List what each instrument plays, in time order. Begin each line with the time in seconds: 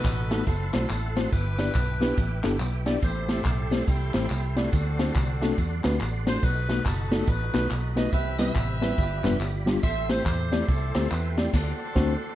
Already playing: tine electric piano B2, saxophone section D#4 F#4 A4 B4, tonewheel organ A4 D#5 F#5 B5
0.04 fingered electric bass A1, kick, clap, closed hi-hat, tambourine
0.31 tine electric piano A3 B3 D#4 F#4 A4, snare, closed hi-hat, tambourine
0.46 fingered electric bass F#1, saxophone section C4 E4 A4, tonewheel organ E5 C6, kick, closed hi-hat, tambourine
0.73 fingered electric bass B1, tine electric piano A3 C4 E4 F#4 C5, snare, clap, closed hi-hat, tambourine
0.89 fingered electric bass A1, saxophone section C4 E4 A4, clap, closed hi-hat, tambourine
1.16 tine electric piano A3 C4 E4 F#4 C5, snare, closed hi-hat, tambourine
1.32 fingered electric bass G1, tine electric piano G2, saxophone section D4 E4 B4, tonewheel organ B4 G5 D6, kick, closed hi-hat, tambourine
1.58 tine electric piano B3 D4 E4 G4 D5, snare, closed hi-hat, tambourine
1.75 fingered electric bass B1, kick, clap, closed hi-hat, tambourine
2.01 tine electric piano B3 D4 E4 G4 B4, snare, closed hi-hat, tambourine
2.18 fingered electric bass A1, kick, closed hi-hat, tambourine
2.44 fingered electric bass G1, tine electric piano B3 D4 E4 G4 A4, snare, clap, closed hi-hat, tambourine
2.60 fingered electric bass B1, clap, closed hi-hat, tambourine
2.86 tine electric piano B3 D4 E4 G4 D5, snare, closed hi-hat, tambourine
3.02 fingered electric bass A1, tine electric piano A2, saxophone section E4 G4 C5, tonewheel organ A4 C6, kick, closed hi-hat, tambourine
3.28 tine electric piano A3 C4 E4 G4 C5, saxophone section C4 E4 A4, snare, closed hi-hat, tambourine
3.45 fingered electric bass B1, kick, clap, closed hi-hat, tambourine
3.71 tine electric piano A3 C4 E4 G4 C5, snare, closed hi-hat, tambourine
3.88 fingered electric bass C2, saxophone section C4 E4 G4, kick, closed hi-hat, tambourine
4.14 fingered electric bass A1, tine electric piano A3 C4 E4 G4 C5, snare, clap, closed hi-hat, tambourine
4.30 fingered electric bass C2, saxophone section G4, clap, closed hi-hat, tambourine
4.56 tine electric piano A3 C4 E4 G4 D5, saxophone section C4 F#4 A4, snare, closed hi-hat, tambourine
4.72 fingered electric bass D2, tine electric piano D3, tonewheel organ D5 F#5 C6, kick, closed hi-hat, tambourine
4.99 tine electric piano A3 C4 D4 F#4 C5, snare, closed hi-hat, tambourine
5.15 fingered electric bass C2, kick, clap, closed hi-hat, tambourine
5.42 tine electric piano A3 C4 D4 F#4 A4, snare, closed hi-hat, tambourine
5.58 fingered electric bass E2, kick, closed hi-hat, tambourine
5.84 fingered electric bass D2, tine electric piano A3 C4 D4 F#4 B4, snare, clap, closed hi-hat, tambourine
6.01 fingered electric bass A1, clap, closed hi-hat, tambourine
6.26 tine electric piano A3 C4 D4 F#4 C5, saxophone section C5, snare, closed hi-hat, tambourine
6.43 fingered electric bass B1, tine electric piano B2, saxophone section D#4 F#4 B4, tonewheel organ D#5 B5, kick, closed hi-hat, tambourine
6.69 tine electric piano A3 B3 D#4 F#4 B4, snare, closed hi-hat, tambourine
6.86 fingered electric bass F#1, saxophone section D#4 F#4 A4, kick, clap, closed hi-hat, tambourine
7.11 tine electric piano A3 B3 D#4 F#4 A4, snare, closed hi-hat, tambourine
7.27 fingered electric bass A1, saxophone section D#4 F#4 B4, kick, closed hi-hat, tambourine
7.54 fingered electric bass B1, tine electric piano A3 B3 D#4 F#4 B4, snare, clap, closed hi-hat, tambourine
7.71 fingered electric bass B1, clap, closed hi-hat, tambourine
7.96 tine electric piano A3 B3 D#4 F#4 B4, saxophone section D#5, snare, closed hi-hat, tambourine
8.12 fingered electric bass C2, tine electric piano C3, tonewheel organ C4 G4 E5, saxophone section G4 B4 E5, kick, closed hi-hat, tambourine
8.39 tine electric piano G3 B3 C4 E4 B4, saxophone section G4 B4 E5, snare, closed hi-hat, tambourine
8.55 fingered electric bass A1, kick, clap, closed hi-hat, tambourine
8.81 tine electric piano G3 B3 C4 E4 B4, snare, closed hi-hat, tambourine
8.97 fingered electric bass G1, tine electric piano G2, tonewheel organ F4 D5 B5, kick, closed hi-hat, tambourine
9.24 fingered electric bass F1, tine electric piano G3 B3 D4 F4 B4, snare, clap, closed hi-hat, tambourine
9.40 fingered electric bass G1, clap, closed hi-hat, tambourine
9.66 tine electric piano G3 B3 D4 F4 G4, snare, closed hi-hat, tambourine
9.83 fingered electric bass A1, tine electric piano A2, saxophone section G4 C5 E5, tonewheel organ A4 E5 G5 C6, kick, closed hi-hat, tambourine
10.09 tine electric piano A3 C4 E4 G4 C5, saxophone section C5, snare, closed hi-hat, tambourine
10.26 fingered electric bass E2, saxophone section E4 G4 C5, kick, clap, closed hi-hat, tambourine
10.52 tine electric piano A3 C4 E4 G4 D5, snare, closed hi-hat, tambourine
10.68 fingered electric bass C2, saxophone section C4 E4 A4, kick, closed hi-hat, tambourine
10.95 fingered electric bass D2, tine electric piano A3 C4 E4 G4 C5, snare, clap, closed hi-hat, tambourine
11.11 fingered electric bass E2, saxophone section B4, clap, closed hi-hat, tambourine
11.37 tine electric piano A3 C4 E4 G4 D5, saxophone section G4, snare, closed hi-hat, tambourine
11.52 fingered electric bass D2, saxophone section C4 F#4 A4, tonewheel organ D5 F#5, kick, snare, crash
11.95 fingered electric bass D2, tine electric piano A3 C4 D4 F#4 C5, kick, snare